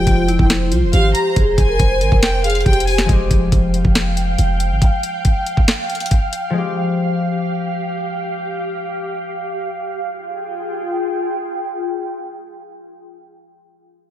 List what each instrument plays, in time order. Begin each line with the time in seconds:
Already playing: harp F3 G#3 C4, ambient pad C5, violin section G5
0.07 808-style bass F1, vibraphone F4, kick, closed hi-hat
0.28 vibraphone E4, closed hi-hat
0.39 808-style bass F1, kick
0.50 snare, closed hi-hat
0.72 808-style bass C2, vibraphone F4, closed hi-hat
0.82 808-style bass F1
0.93 808-style bass G#1, vibraphone G4, violin section F5, closed hi-hat
1.15 violin section A#5, closed hi-hat
1.36 808-style bass F1, vibraphone G#4, kick, closed hi-hat
1.58 808-style bass F1, violin section G#5, kick, closed hi-hat
1.69 vibraphone A#4
1.79 808-style bass F1, vibraphone C5, kick, closed hi-hat
2.01 808-style bass G#1, vibraphone A#4, closed hi-hat
2.12 808-style bass F1, kick
2.23 violin section G5, snare, closed hi-hat
2.44 vibraphone G#4, violin section F5, closed hi-hat
2.50 closed hi-hat
2.55 closed hi-hat
2.61 closed hi-hat
2.66 808-style bass F1, vibraphone G4, violin section G5, kick, closed hi-hat
2.73 closed hi-hat
2.80 closed hi-hat
2.87 violin section G#5, open hi-hat
2.98 snare
3.05 harp F3 G#3
3.09 808-style bass F1, harp C4 G4, ambient pad F5 G5, kick, closed hi-hat
3.31 808-style bass F1, kick, closed hi-hat
3.52 808-style bass F1, kick, closed hi-hat
3.74 closed hi-hat
3.85 808-style bass F1, kick
3.95 snare, closed hi-hat
4.17 closed hi-hat
4.38 808-style bass F1, closed hi-hat
4.60 closed hi-hat
4.71 808-style bass G#1
4.82 kick, closed hi-hat
5.03 closed hi-hat
5.25 kick, closed hi-hat
5.46 closed hi-hat
5.57 kick
5.68 snare, closed hi-hat
5.90 closed hi-hat
5.95 closed hi-hat
6.00 closed hi-hat
6.06 closed hi-hat
6.11 kick, closed hi-hat
6.33 closed hi-hat
6.50 harp F3 G#3
6.54 harp C4 G4, ambient pad G4
10.00 ambient pad F4 G#4 G5